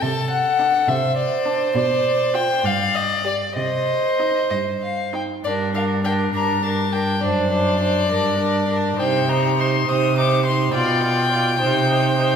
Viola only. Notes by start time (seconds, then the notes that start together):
0.59 D4
1.46 D4
2.34 F4
3.24 G4
4.19 D#4
5.13 D#4
5.44 D4
5.73 D4
6.03 D4
6.33 D4
6.62 D4
6.92 D4
7.21 D4
7.50 D4
7.79 D4
8.09 D4
8.38 D4
8.68 D4
8.98 D#4
9.28 D#4
9.56 D#4
9.86 D#4
10.16 D#4
10.45 D#4
10.74 F4
11.02 F4
11.31 F4
11.60 D#4
11.89 D#4
12.17 D#4